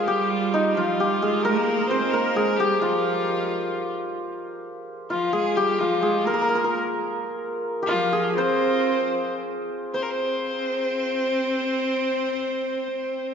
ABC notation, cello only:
X:1
M:6/8
L:1/8
Q:3/8=87
K:none
V:1 name="Cello" clef=bass
G,3 F, G, _A, | _B,2 C B, _A, G, | F,4- F, z | z4 F, _A, |
G, F, _A, _B,2 z | z4 F,2 | C4 z2 | C6- |
C6 |]